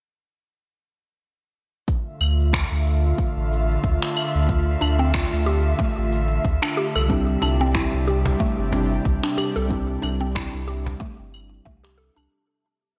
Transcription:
1.87 analog synth pad D3 A3 F4 E5, kick, shaker
2.21 sub bass D2, claves, shaker
2.40 shaker
2.53 finger snap, kick, shaker
2.72 sub bass D2, shaker
2.87 shaker
3.06 shaker
3.18 kick, shaker
3.37 sub bass A1
3.52 shaker
3.71 shaker
3.84 sub bass D2, kick, shaker
4.02 finger snap
4.17 claves, shaker
4.35 sub bass D2, shaker
4.49 kick, shaker
4.81 sub bass D2, synth pluck D4, claves, shaker
4.99 synth pluck C4, shaker
5.14 synth pluck F4, finger snap, kick, shaker
5.33 sub bass D2, shaker
5.46 synth pluck G4, shaker
5.66 shaker
5.79 synth pluck A3, kick, shaker
5.98 sub bass A1
6.12 shaker
6.31 shaker
6.45 sub bass D2, kick, shaker
6.62 synth pluck D4, finger snap
6.77 synth pluck G4, shaker
6.96 sub bass C2, synth pluck A4, claves, shaker
7.08 analog synth pad C3 G3 D4, synth keys G3 C4 D4 E4 G4, kick, shaker
7.42 sub bass C2, synth pluck D4, cajon slap, claves, shaker
7.61 synth pluck C4, shaker
7.75 synth pluck E4, finger snap, kick, shaker
7.94 sub bass C2, shaker
8.07 synth pluck G4, shaker
8.25 cajon bass, shaker
8.40 synth pluck A3, kick, shaker
8.59 sub bass G1
8.72 synth keys G3 C4 D4 E4 G4, cajon bass, shaker
8.92 shaker
9.05 sub bass C2, kick, shaker
9.23 synth pluck D4, finger snap
9.38 synth pluck G4, cajon slap, claves, shaker
9.56 sub bass C2, synth pluck A4, shaker
9.68 synth keys G3 C4 D4 E4, kick, shaker
9.73 synth keys G4
10.02 sub bass C2, synth pluck D4, cajon slap, claves, shaker
10.21 synth pluck C4, shaker
10.35 synth pluck E4, finger snap, kick, shaker
10.54 sub bass C2, shaker
10.68 synth pluck G4, shaker
10.86 cajon bass, shaker
11.00 synth pluck A3, kick, shaker
11.19 sub bass G1
11.34 claves, shaker
11.53 shaker
11.65 sub bass C2, synth pluck A3, kick, cajon slap, shaker
11.84 synth pluck G4, finger snap
11.98 synth pluck A4, shaker
12.16 sub bass C2, synth pluck D4, claves, shaker

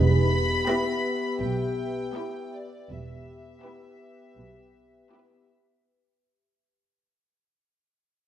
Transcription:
Already playing: double bass section E1, cello section E2, french horn section B3 G4, ambient pad G4 B4 E5, music box D5, violin section B5
0.67 viola section B3 E4, violin section G4 B4, music box A#6
1.41 double bass section B1, cello section B2, violin section G5
2.16 viola section B3 E4, violin section G4 B4
2.53 violin section D5
2.90 double bass section E1, cello section E2, french horn section B3 G4, ambient pad G4 B4 E5, violin section E5
3.64 viola section B3 E4, violin section G4 B4
4.38 double bass section B1, cello section B2
5.12 viola section B3 E4, violin section G4 B4

